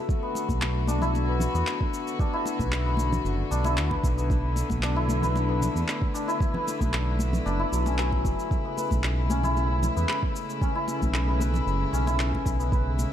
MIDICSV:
0, 0, Header, 1, 6, 480
1, 0, Start_track
1, 0, Tempo, 526316
1, 82, Time_signature, 4, 2, 24, 8
1, 11973, End_track
2, 0, Start_track
2, 0, Title_t, "Singing bowl"
2, 0, Program_c, 0, 14
2, 0, Note_on_c, 0, 81, 74
2, 92, Note_off_c, 0, 81, 0
2, 11973, End_track
3, 0, Start_track
3, 0, Title_t, "Santur"
3, 0, Program_c, 1, 15
3, 0, Note_on_c, 1, 57, 108
3, 0, Note_on_c, 1, 59, 85
3, 0, Note_on_c, 1, 64, 79
3, 0, Note_on_c, 1, 66, 72
3, 203, Note_off_c, 1, 59, 0
3, 206, Note_on_c, 1, 59, 75
3, 801, Note_on_c, 1, 62, 96
3, 922, Note_off_c, 1, 64, 0
3, 926, Note_on_c, 1, 64, 100
3, 1169, Note_on_c, 1, 71, 75
3, 1406, Note_off_c, 1, 59, 0
3, 1410, Note_on_c, 1, 59, 79
3, 1996, Note_off_c, 1, 62, 0
3, 2000, Note_on_c, 1, 62, 96
3, 2125, Note_off_c, 1, 64, 0
3, 2129, Note_on_c, 1, 64, 101
3, 2325, Note_off_c, 1, 66, 0
3, 2364, Note_off_c, 1, 71, 0
3, 2368, Note_on_c, 1, 71, 75
3, 2603, Note_off_c, 1, 59, 0
3, 2607, Note_on_c, 1, 59, 76
3, 3197, Note_off_c, 1, 62, 0
3, 3201, Note_on_c, 1, 62, 100
3, 3323, Note_off_c, 1, 64, 0
3, 3326, Note_on_c, 1, 64, 100
3, 3532, Note_off_c, 1, 57, 0
3, 3564, Note_off_c, 1, 71, 0
3, 3567, Note_on_c, 1, 71, 77
3, 3803, Note_off_c, 1, 59, 0
3, 3806, Note_on_c, 1, 59, 77
3, 4396, Note_off_c, 1, 62, 0
3, 4400, Note_on_c, 1, 62, 98
3, 4522, Note_off_c, 1, 64, 0
3, 4526, Note_on_c, 1, 64, 104
3, 4763, Note_off_c, 1, 71, 0
3, 4767, Note_on_c, 1, 71, 80
3, 5002, Note_off_c, 1, 59, 0
3, 5005, Note_on_c, 1, 59, 74
3, 5596, Note_off_c, 1, 62, 0
3, 5599, Note_on_c, 1, 62, 104
3, 5721, Note_off_c, 1, 64, 0
3, 5725, Note_on_c, 1, 64, 105
3, 5961, Note_off_c, 1, 71, 0
3, 5965, Note_on_c, 1, 71, 74
3, 6201, Note_off_c, 1, 59, 0
3, 6205, Note_on_c, 1, 59, 77
3, 6796, Note_off_c, 1, 62, 0
3, 6800, Note_on_c, 1, 62, 105
3, 6923, Note_off_c, 1, 64, 0
3, 6927, Note_on_c, 1, 64, 92
3, 7042, Note_on_c, 1, 54, 71
3, 7166, Note_on_c, 1, 61, 77
3, 7221, Note_off_c, 1, 62, 0
3, 7268, Note_off_c, 1, 54, 0
3, 7279, Note_on_c, 1, 54, 78
3, 7807, Note_off_c, 1, 54, 0
3, 7885, Note_off_c, 1, 59, 0
3, 7888, Note_on_c, 1, 59, 75
3, 7999, Note_off_c, 1, 71, 0
3, 8003, Note_on_c, 1, 71, 76
3, 8477, Note_off_c, 1, 61, 0
3, 8481, Note_on_c, 1, 61, 92
3, 8603, Note_off_c, 1, 64, 0
3, 8607, Note_on_c, 1, 64, 108
3, 9083, Note_off_c, 1, 59, 0
3, 9087, Note_on_c, 1, 59, 82
3, 9197, Note_off_c, 1, 71, 0
3, 9201, Note_on_c, 1, 71, 82
3, 9677, Note_off_c, 1, 61, 0
3, 9681, Note_on_c, 1, 61, 100
3, 9802, Note_off_c, 1, 64, 0
3, 9805, Note_on_c, 1, 64, 103
3, 10284, Note_off_c, 1, 59, 0
3, 10287, Note_on_c, 1, 59, 77
3, 10393, Note_off_c, 1, 71, 0
3, 10397, Note_on_c, 1, 71, 79
3, 10874, Note_off_c, 1, 61, 0
3, 10878, Note_on_c, 1, 61, 96
3, 11002, Note_off_c, 1, 64, 0
3, 11006, Note_on_c, 1, 64, 101
3, 11482, Note_off_c, 1, 59, 0
3, 11486, Note_on_c, 1, 59, 80
3, 11597, Note_off_c, 1, 71, 0
3, 11601, Note_on_c, 1, 71, 83
3, 11973, Note_off_c, 1, 59, 0
3, 11973, Note_off_c, 1, 61, 0
3, 11973, Note_off_c, 1, 64, 0
3, 11973, Note_off_c, 1, 71, 0
3, 11973, End_track
4, 0, Start_track
4, 0, Title_t, "String section"
4, 0, Program_c, 2, 48
4, 81, Note_on_c, 2, 50, 84
4, 82, Note_on_c, 2, 57, 74
4, 82, Note_on_c, 2, 66, 96
4, 83, Note_on_c, 2, 59, 76
4, 3885, Note_off_c, 2, 66, 0
4, 3924, Note_on_c, 2, 64, 90
4, 7725, Note_off_c, 2, 50, 0
4, 7726, Note_off_c, 2, 59, 0
4, 7764, Note_on_c, 2, 49, 84
4, 7764, Note_on_c, 2, 56, 73
4, 11973, Note_off_c, 2, 49, 0
4, 11973, Note_off_c, 2, 56, 0
4, 11973, Note_off_c, 2, 57, 0
4, 11973, Note_off_c, 2, 64, 0
4, 11973, End_track
5, 0, Start_track
5, 0, Title_t, "Analog synth bass"
5, 0, Program_c, 3, 38
5, 448, Note_on_c, 3, 35, 93
5, 1347, Note_off_c, 3, 35, 0
5, 1408, Note_on_c, 3, 40, 106
5, 1487, Note_off_c, 3, 40, 0
5, 2368, Note_on_c, 3, 35, 95
5, 2907, Note_off_c, 3, 35, 0
5, 2960, Note_on_c, 3, 30, 98
5, 3132, Note_off_c, 3, 30, 0
5, 3202, Note_on_c, 3, 35, 89
5, 3440, Note_on_c, 3, 38, 94
5, 3453, Note_off_c, 3, 35, 0
5, 3612, Note_off_c, 3, 38, 0
5, 3680, Note_on_c, 3, 35, 86
5, 4227, Note_off_c, 3, 35, 0
5, 4286, Note_on_c, 3, 35, 106
5, 5186, Note_off_c, 3, 35, 0
5, 5247, Note_on_c, 3, 40, 111
5, 5327, Note_off_c, 3, 40, 0
5, 6207, Note_on_c, 3, 35, 97
5, 6746, Note_off_c, 3, 35, 0
5, 6804, Note_on_c, 3, 30, 96
5, 6974, Note_off_c, 3, 30, 0
5, 7044, Note_on_c, 3, 35, 88
5, 7523, Note_on_c, 3, 30, 102
5, 7536, Note_off_c, 3, 35, 0
5, 7610, Note_off_c, 3, 30, 0
5, 8127, Note_on_c, 3, 35, 98
5, 9027, Note_off_c, 3, 35, 0
5, 9090, Note_on_c, 3, 40, 101
5, 9168, Note_off_c, 3, 40, 0
5, 10048, Note_on_c, 3, 35, 104
5, 10587, Note_off_c, 3, 35, 0
5, 10641, Note_on_c, 3, 30, 98
5, 10813, Note_off_c, 3, 30, 0
5, 10881, Note_on_c, 3, 35, 91
5, 11117, Note_off_c, 3, 35, 0
5, 11122, Note_on_c, 3, 35, 100
5, 11293, Note_off_c, 3, 35, 0
5, 11362, Note_on_c, 3, 35, 85
5, 11908, Note_off_c, 3, 35, 0
5, 11973, End_track
6, 0, Start_track
6, 0, Title_t, "Drums"
6, 81, Note_on_c, 9, 36, 119
6, 90, Note_on_c, 9, 69, 34
6, 172, Note_off_c, 9, 36, 0
6, 181, Note_off_c, 9, 69, 0
6, 320, Note_on_c, 9, 62, 51
6, 330, Note_on_c, 9, 69, 83
6, 411, Note_off_c, 9, 62, 0
6, 421, Note_off_c, 9, 69, 0
6, 446, Note_on_c, 9, 63, 82
6, 448, Note_on_c, 9, 36, 63
6, 454, Note_on_c, 9, 69, 43
6, 537, Note_off_c, 9, 63, 0
6, 539, Note_off_c, 9, 36, 0
6, 546, Note_off_c, 9, 69, 0
6, 563, Note_on_c, 9, 39, 105
6, 569, Note_on_c, 9, 69, 32
6, 654, Note_off_c, 9, 39, 0
6, 660, Note_off_c, 9, 69, 0
6, 797, Note_on_c, 9, 63, 75
6, 807, Note_on_c, 9, 69, 80
6, 889, Note_off_c, 9, 63, 0
6, 899, Note_off_c, 9, 69, 0
6, 928, Note_on_c, 9, 64, 78
6, 935, Note_on_c, 9, 69, 40
6, 1019, Note_off_c, 9, 64, 0
6, 1026, Note_off_c, 9, 69, 0
6, 1049, Note_on_c, 9, 69, 33
6, 1050, Note_on_c, 9, 62, 51
6, 1141, Note_off_c, 9, 62, 0
6, 1141, Note_off_c, 9, 69, 0
6, 1278, Note_on_c, 9, 64, 80
6, 1287, Note_on_c, 9, 69, 70
6, 1369, Note_off_c, 9, 64, 0
6, 1378, Note_off_c, 9, 69, 0
6, 1414, Note_on_c, 9, 69, 46
6, 1506, Note_off_c, 9, 69, 0
6, 1522, Note_on_c, 9, 39, 98
6, 1528, Note_on_c, 9, 69, 34
6, 1613, Note_off_c, 9, 39, 0
6, 1619, Note_off_c, 9, 69, 0
6, 1648, Note_on_c, 9, 36, 103
6, 1739, Note_off_c, 9, 36, 0
6, 1767, Note_on_c, 9, 69, 78
6, 1858, Note_off_c, 9, 69, 0
6, 1892, Note_on_c, 9, 69, 47
6, 1984, Note_off_c, 9, 69, 0
6, 2001, Note_on_c, 9, 36, 121
6, 2009, Note_on_c, 9, 69, 33
6, 2092, Note_off_c, 9, 36, 0
6, 2100, Note_off_c, 9, 69, 0
6, 2239, Note_on_c, 9, 62, 53
6, 2249, Note_on_c, 9, 69, 82
6, 2331, Note_off_c, 9, 62, 0
6, 2340, Note_off_c, 9, 69, 0
6, 2366, Note_on_c, 9, 63, 90
6, 2367, Note_on_c, 9, 36, 63
6, 2375, Note_on_c, 9, 69, 47
6, 2457, Note_off_c, 9, 63, 0
6, 2459, Note_off_c, 9, 36, 0
6, 2467, Note_off_c, 9, 69, 0
6, 2483, Note_on_c, 9, 39, 111
6, 2489, Note_on_c, 9, 69, 33
6, 2574, Note_off_c, 9, 39, 0
6, 2581, Note_off_c, 9, 69, 0
6, 2709, Note_on_c, 9, 63, 79
6, 2728, Note_on_c, 9, 69, 75
6, 2800, Note_off_c, 9, 63, 0
6, 2820, Note_off_c, 9, 69, 0
6, 2850, Note_on_c, 9, 64, 83
6, 2856, Note_on_c, 9, 69, 45
6, 2941, Note_off_c, 9, 64, 0
6, 2947, Note_off_c, 9, 69, 0
6, 2970, Note_on_c, 9, 69, 33
6, 3061, Note_off_c, 9, 69, 0
6, 3209, Note_on_c, 9, 69, 74
6, 3300, Note_off_c, 9, 69, 0
6, 3323, Note_on_c, 9, 62, 67
6, 3334, Note_on_c, 9, 69, 47
6, 3414, Note_off_c, 9, 62, 0
6, 3425, Note_off_c, 9, 69, 0
6, 3442, Note_on_c, 9, 39, 102
6, 3448, Note_on_c, 9, 69, 34
6, 3533, Note_off_c, 9, 39, 0
6, 3539, Note_off_c, 9, 69, 0
6, 3566, Note_on_c, 9, 36, 63
6, 3567, Note_on_c, 9, 62, 58
6, 3658, Note_off_c, 9, 36, 0
6, 3658, Note_off_c, 9, 62, 0
6, 3681, Note_on_c, 9, 36, 114
6, 3688, Note_on_c, 9, 69, 77
6, 3772, Note_off_c, 9, 36, 0
6, 3779, Note_off_c, 9, 69, 0
6, 3815, Note_on_c, 9, 69, 46
6, 3906, Note_off_c, 9, 69, 0
6, 3921, Note_on_c, 9, 36, 127
6, 3929, Note_on_c, 9, 69, 34
6, 4012, Note_off_c, 9, 36, 0
6, 4020, Note_off_c, 9, 69, 0
6, 4159, Note_on_c, 9, 62, 50
6, 4167, Note_on_c, 9, 69, 86
6, 4250, Note_off_c, 9, 62, 0
6, 4258, Note_off_c, 9, 69, 0
6, 4284, Note_on_c, 9, 63, 90
6, 4287, Note_on_c, 9, 36, 63
6, 4294, Note_on_c, 9, 69, 45
6, 4375, Note_off_c, 9, 63, 0
6, 4378, Note_off_c, 9, 36, 0
6, 4386, Note_off_c, 9, 69, 0
6, 4403, Note_on_c, 9, 39, 100
6, 4409, Note_on_c, 9, 69, 34
6, 4494, Note_off_c, 9, 39, 0
6, 4500, Note_off_c, 9, 69, 0
6, 4639, Note_on_c, 9, 63, 88
6, 4647, Note_on_c, 9, 69, 76
6, 4731, Note_off_c, 9, 63, 0
6, 4739, Note_off_c, 9, 69, 0
6, 4770, Note_on_c, 9, 64, 82
6, 4775, Note_on_c, 9, 69, 43
6, 4861, Note_off_c, 9, 64, 0
6, 4866, Note_off_c, 9, 69, 0
6, 4884, Note_on_c, 9, 62, 56
6, 4891, Note_on_c, 9, 69, 33
6, 4975, Note_off_c, 9, 62, 0
6, 4982, Note_off_c, 9, 69, 0
6, 5126, Note_on_c, 9, 64, 83
6, 5129, Note_on_c, 9, 69, 79
6, 5217, Note_off_c, 9, 64, 0
6, 5220, Note_off_c, 9, 69, 0
6, 5258, Note_on_c, 9, 69, 46
6, 5349, Note_off_c, 9, 69, 0
6, 5365, Note_on_c, 9, 39, 102
6, 5371, Note_on_c, 9, 69, 36
6, 5456, Note_off_c, 9, 39, 0
6, 5462, Note_off_c, 9, 69, 0
6, 5487, Note_on_c, 9, 36, 110
6, 5578, Note_off_c, 9, 36, 0
6, 5610, Note_on_c, 9, 69, 81
6, 5701, Note_off_c, 9, 69, 0
6, 5737, Note_on_c, 9, 69, 47
6, 5828, Note_off_c, 9, 69, 0
6, 5841, Note_on_c, 9, 36, 124
6, 5851, Note_on_c, 9, 69, 35
6, 5932, Note_off_c, 9, 36, 0
6, 5942, Note_off_c, 9, 69, 0
6, 5966, Note_on_c, 9, 64, 86
6, 6057, Note_off_c, 9, 64, 0
6, 6091, Note_on_c, 9, 62, 51
6, 6091, Note_on_c, 9, 69, 82
6, 6182, Note_off_c, 9, 62, 0
6, 6182, Note_off_c, 9, 69, 0
6, 6207, Note_on_c, 9, 36, 62
6, 6212, Note_on_c, 9, 63, 84
6, 6217, Note_on_c, 9, 69, 47
6, 6299, Note_off_c, 9, 36, 0
6, 6303, Note_off_c, 9, 63, 0
6, 6308, Note_off_c, 9, 69, 0
6, 6325, Note_on_c, 9, 39, 97
6, 6331, Note_on_c, 9, 69, 36
6, 6416, Note_off_c, 9, 39, 0
6, 6422, Note_off_c, 9, 69, 0
6, 6557, Note_on_c, 9, 63, 78
6, 6569, Note_on_c, 9, 69, 81
6, 6648, Note_off_c, 9, 63, 0
6, 6660, Note_off_c, 9, 69, 0
6, 6686, Note_on_c, 9, 64, 84
6, 6696, Note_on_c, 9, 69, 42
6, 6778, Note_off_c, 9, 64, 0
6, 6787, Note_off_c, 9, 69, 0
6, 6809, Note_on_c, 9, 69, 34
6, 6901, Note_off_c, 9, 69, 0
6, 7049, Note_on_c, 9, 69, 79
6, 7141, Note_off_c, 9, 69, 0
6, 7169, Note_on_c, 9, 62, 66
6, 7174, Note_on_c, 9, 69, 49
6, 7261, Note_off_c, 9, 62, 0
6, 7265, Note_off_c, 9, 69, 0
6, 7281, Note_on_c, 9, 39, 99
6, 7288, Note_on_c, 9, 69, 33
6, 7373, Note_off_c, 9, 39, 0
6, 7379, Note_off_c, 9, 69, 0
6, 7408, Note_on_c, 9, 36, 62
6, 7409, Note_on_c, 9, 62, 48
6, 7499, Note_off_c, 9, 36, 0
6, 7500, Note_off_c, 9, 62, 0
6, 7522, Note_on_c, 9, 36, 118
6, 7528, Note_on_c, 9, 69, 77
6, 7613, Note_off_c, 9, 36, 0
6, 7619, Note_off_c, 9, 69, 0
6, 7655, Note_on_c, 9, 69, 45
6, 7746, Note_off_c, 9, 69, 0
6, 7761, Note_on_c, 9, 36, 122
6, 7768, Note_on_c, 9, 69, 33
6, 7853, Note_off_c, 9, 36, 0
6, 7859, Note_off_c, 9, 69, 0
6, 8005, Note_on_c, 9, 62, 48
6, 8007, Note_on_c, 9, 69, 84
6, 8096, Note_off_c, 9, 62, 0
6, 8098, Note_off_c, 9, 69, 0
6, 8126, Note_on_c, 9, 63, 72
6, 8127, Note_on_c, 9, 36, 59
6, 8134, Note_on_c, 9, 69, 44
6, 8217, Note_off_c, 9, 63, 0
6, 8219, Note_off_c, 9, 36, 0
6, 8225, Note_off_c, 9, 69, 0
6, 8241, Note_on_c, 9, 39, 97
6, 8247, Note_on_c, 9, 69, 32
6, 8332, Note_off_c, 9, 39, 0
6, 8338, Note_off_c, 9, 69, 0
6, 8481, Note_on_c, 9, 63, 83
6, 8486, Note_on_c, 9, 69, 74
6, 8572, Note_off_c, 9, 63, 0
6, 8577, Note_off_c, 9, 69, 0
6, 8604, Note_on_c, 9, 64, 83
6, 8614, Note_on_c, 9, 69, 43
6, 8695, Note_off_c, 9, 64, 0
6, 8705, Note_off_c, 9, 69, 0
6, 8726, Note_on_c, 9, 69, 32
6, 8728, Note_on_c, 9, 62, 49
6, 8817, Note_off_c, 9, 69, 0
6, 8819, Note_off_c, 9, 62, 0
6, 8963, Note_on_c, 9, 64, 75
6, 8967, Note_on_c, 9, 69, 75
6, 9054, Note_off_c, 9, 64, 0
6, 9058, Note_off_c, 9, 69, 0
6, 9093, Note_on_c, 9, 69, 46
6, 9184, Note_off_c, 9, 69, 0
6, 9201, Note_on_c, 9, 39, 93
6, 9207, Note_on_c, 9, 69, 33
6, 9292, Note_off_c, 9, 39, 0
6, 9298, Note_off_c, 9, 69, 0
6, 9327, Note_on_c, 9, 36, 100
6, 9418, Note_off_c, 9, 36, 0
6, 9447, Note_on_c, 9, 69, 79
6, 9538, Note_off_c, 9, 69, 0
6, 9574, Note_on_c, 9, 69, 47
6, 9665, Note_off_c, 9, 69, 0
6, 9681, Note_on_c, 9, 36, 116
6, 9688, Note_on_c, 9, 69, 31
6, 9772, Note_off_c, 9, 36, 0
6, 9779, Note_off_c, 9, 69, 0
6, 9921, Note_on_c, 9, 62, 57
6, 9927, Note_on_c, 9, 69, 74
6, 10012, Note_off_c, 9, 62, 0
6, 10018, Note_off_c, 9, 69, 0
6, 10047, Note_on_c, 9, 36, 58
6, 10053, Note_on_c, 9, 69, 47
6, 10054, Note_on_c, 9, 63, 70
6, 10138, Note_off_c, 9, 36, 0
6, 10144, Note_off_c, 9, 69, 0
6, 10145, Note_off_c, 9, 63, 0
6, 10161, Note_on_c, 9, 39, 94
6, 10167, Note_on_c, 9, 69, 32
6, 10252, Note_off_c, 9, 39, 0
6, 10258, Note_off_c, 9, 69, 0
6, 10402, Note_on_c, 9, 63, 77
6, 10407, Note_on_c, 9, 69, 73
6, 10493, Note_off_c, 9, 63, 0
6, 10499, Note_off_c, 9, 69, 0
6, 10523, Note_on_c, 9, 64, 73
6, 10535, Note_on_c, 9, 69, 39
6, 10614, Note_off_c, 9, 64, 0
6, 10626, Note_off_c, 9, 69, 0
6, 10648, Note_on_c, 9, 69, 32
6, 10739, Note_off_c, 9, 69, 0
6, 10889, Note_on_c, 9, 69, 76
6, 10981, Note_off_c, 9, 69, 0
6, 11010, Note_on_c, 9, 62, 70
6, 11015, Note_on_c, 9, 69, 46
6, 11101, Note_off_c, 9, 62, 0
6, 11106, Note_off_c, 9, 69, 0
6, 11122, Note_on_c, 9, 39, 89
6, 11128, Note_on_c, 9, 69, 33
6, 11213, Note_off_c, 9, 39, 0
6, 11219, Note_off_c, 9, 69, 0
6, 11248, Note_on_c, 9, 36, 59
6, 11259, Note_on_c, 9, 62, 53
6, 11339, Note_off_c, 9, 36, 0
6, 11351, Note_off_c, 9, 62, 0
6, 11361, Note_on_c, 9, 36, 100
6, 11367, Note_on_c, 9, 69, 77
6, 11452, Note_off_c, 9, 36, 0
6, 11458, Note_off_c, 9, 69, 0
6, 11493, Note_on_c, 9, 69, 45
6, 11584, Note_off_c, 9, 69, 0
6, 11601, Note_on_c, 9, 36, 119
6, 11607, Note_on_c, 9, 69, 30
6, 11693, Note_off_c, 9, 36, 0
6, 11699, Note_off_c, 9, 69, 0
6, 11844, Note_on_c, 9, 62, 55
6, 11847, Note_on_c, 9, 69, 77
6, 11936, Note_off_c, 9, 62, 0
6, 11939, Note_off_c, 9, 69, 0
6, 11973, End_track
0, 0, End_of_file